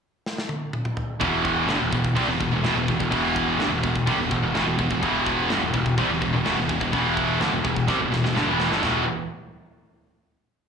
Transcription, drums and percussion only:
0.26 snare
0.38 snare
0.49 high tom
0.73 mid tom
0.85 mid tom
0.97 floor tom
1.21 kick, crash
1.45 kick, crash
1.68 snare, crash
1.92 kick, crash
2.04 kick
2.17 kick, crash
2.41 kick, crash
2.64 snare, crash
2.88 kick, crash
3.00 kick
3.12 kick, crash
3.36 kick, crash
3.60 snare, crash
3.84 kick, crash
3.96 kick
4.07 kick, crash
4.31 kick, crash
4.55 snare, crash
4.78 kick, crash
4.91 kick
5.03 kick, crash
5.26 kick, crash
5.50 snare, crash
5.73 kick, crash
5.86 kick
5.98 kick, crash
6.21 kick, crash
6.46 snare, crash
6.69 kick, crash
6.81 kick
6.93 kick, crash
7.17 kick, crash
7.41 snare, crash
7.65 kick, crash
7.76 kick
7.88 kick, snare
8.12 snare
8.25 snare
8.36 snare
8.60 snare
8.72 snare
8.83 snare, floor tom, crash

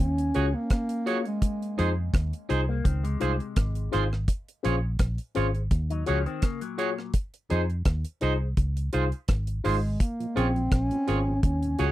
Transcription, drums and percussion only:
0.18 closed hi-hat
0.34 closed hi-hat
0.70 kick, cross-stick, closed hi-hat
0.89 closed hi-hat
1.07 closed hi-hat
1.25 closed hi-hat
1.42 kick, closed hi-hat
1.62 closed hi-hat
1.79 closed hi-hat
2.14 kick, cross-stick, closed hi-hat
2.33 closed hi-hat
2.50 closed hi-hat
2.85 kick, closed hi-hat
3.05 closed hi-hat
3.21 closed hi-hat
3.40 closed hi-hat
3.56 kick, cross-stick, closed hi-hat
3.75 closed hi-hat
3.93 cross-stick, closed hi-hat
4.13 cross-stick
4.28 kick, closed hi-hat
4.48 closed hi-hat
4.65 closed hi-hat
4.99 kick, cross-stick, closed hi-hat
5.18 closed hi-hat
5.35 closed hi-hat
5.55 closed hi-hat
5.71 kick, closed hi-hat
5.90 closed hi-hat
6.06 closed hi-hat
6.26 closed hi-hat
6.42 kick, cross-stick, closed hi-hat
6.61 closed hi-hat
6.79 closed hi-hat
6.99 cross-stick
7.14 kick, closed hi-hat
7.34 closed hi-hat
7.50 closed hi-hat
7.70 closed hi-hat
7.85 kick, cross-stick, closed hi-hat
8.05 closed hi-hat
8.21 closed hi-hat
8.57 kick, closed hi-hat
8.77 closed hi-hat
8.93 closed hi-hat
9.12 closed hi-hat
9.28 kick, cross-stick, closed hi-hat
9.47 closed hi-hat
9.65 open hi-hat
10.00 kick, closed hi-hat
10.20 closed hi-hat
10.37 closed hi-hat
10.56 closed hi-hat
10.72 kick, cross-stick, closed hi-hat
10.91 closed hi-hat
11.08 closed hi-hat
11.43 kick, closed hi-hat
11.63 closed hi-hat
11.79 closed hi-hat

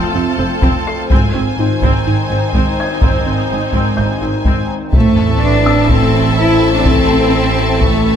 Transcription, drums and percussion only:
0.62 taiko
1.10 taiko
1.82 taiko
2.54 taiko
3.02 taiko
3.73 taiko
4.45 taiko
4.93 taiko
5.89 taiko
6.85 taiko
7.81 taiko

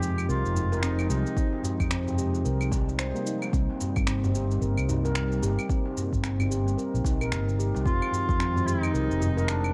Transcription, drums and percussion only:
0.03 shaker
0.17 darbuka tek, claves, shaker
0.30 shaker
0.46 shaker
0.55 darbuka ka, darbuka dum, shaker
0.72 darbuka tek, shaker
0.83 finger snap, shaker
0.99 darbuka ka, claves, shaker
1.10 darbuka tek, shaker
1.26 shaker
1.37 kick, shaker
1.53 darbuka ka, darbuka tek
1.63 darbuka dum, shaker
1.80 kick, claves, shaker
1.91 finger snap, darbuka ka, shaker
2.07 darbuka dum, shaker
2.18 darbuka ka, shaker
2.34 darbuka tek, shaker
2.45 shaker
2.61 claves, shaker
2.72 kick, darbuka tek, shaker
2.89 shaker
2.99 finger snap, shaker
3.16 shaker
3.27 shaker
3.42 darbuka tek, claves, shaker
3.53 kick, shaker
3.70 darbuka ka, darbuka tek
3.81 darbuka dum, shaker
3.96 kick, claves, shaker
4.07 finger snap, darbuka ka, shaker
4.24 darbuka dum, shaker
4.35 shaker
4.51 darbuka tek, shaker
4.62 shaker
4.77 claves, shaker
4.89 darbuka ka, darbuka dum, shaker
5.05 darbuka tek, shaker
5.15 finger snap, shaker
5.32 darbuka ka, shaker
5.43 darbuka tek, shaker
5.59 claves, shaker
5.69 kick, shaker
5.86 darbuka ka, darbuka tek
5.97 darbuka dum, shaker
6.13 kick, shaker
6.24 finger snap, darbuka ka, shaker
6.39 darbuka dum, claves, shaker
6.50 darbuka ka, shaker
6.67 darbuka tek, shaker
6.79 shaker
6.95 shaker
7.05 kick, darbuka tek, shaker
7.21 claves, shaker
7.32 finger snap, shaker
7.49 shaker
7.60 shaker
7.75 darbuka tek, shaker
7.86 kick, shaker
8.02 darbuka ka, darbuka tek, claves
8.12 darbuka dum, shaker
8.29 kick, shaker
8.39 finger snap, darbuka ka, shaker
8.56 darbuka dum, shaker
8.68 shaker
8.83 darbuka tek, claves, shaker
8.95 shaker
9.11 shaker
9.20 darbuka ka, darbuka dum, shaker
9.37 darbuka tek, shaker
9.48 finger snap, shaker
9.64 darbuka ka, claves, shaker

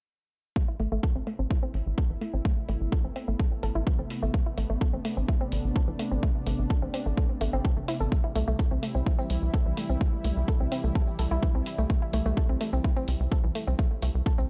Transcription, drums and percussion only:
0.56 kick
0.80 open hi-hat
1.03 kick
1.27 open hi-hat
1.51 kick
1.74 open hi-hat
1.98 kick
2.21 open hi-hat
2.45 kick
2.69 open hi-hat
2.92 kick
3.16 open hi-hat
3.39 kick
3.63 open hi-hat
3.87 kick
4.10 open hi-hat
4.34 kick
4.58 open hi-hat
4.81 kick
5.05 open hi-hat
5.28 kick
5.52 open hi-hat
5.76 kick
5.99 open hi-hat
6.23 kick
6.47 open hi-hat
6.70 kick
6.94 open hi-hat
7.17 kick
7.41 open hi-hat
7.65 kick
7.88 open hi-hat
8.12 kick, shaker
8.36 open hi-hat, shaker
8.47 shaker
8.59 kick, shaker
8.83 open hi-hat, shaker
8.95 shaker
9.06 kick, shaker
9.18 shaker
9.30 open hi-hat, shaker
9.42 shaker
9.54 kick, shaker
9.77 open hi-hat, shaker
9.90 shaker
10.01 kick, shaker
10.24 open hi-hat, shaker
10.37 shaker
10.48 kick, shaker
10.72 open hi-hat, shaker
10.84 shaker
10.95 kick, shaker
11.07 shaker
11.19 open hi-hat, shaker
11.32 shaker
11.43 kick, shaker
11.66 open hi-hat, shaker
11.78 shaker
11.90 kick, shaker
12.13 open hi-hat, shaker
12.26 shaker
12.37 kick, shaker
12.61 open hi-hat, shaker
12.73 shaker
12.84 kick, shaker
12.97 shaker
13.08 open hi-hat, shaker
13.21 shaker
13.32 kick, shaker
13.55 open hi-hat, shaker
13.68 shaker
13.78 kick, shaker
14.02 open hi-hat, shaker
14.15 shaker
14.26 kick, shaker
14.39 shaker

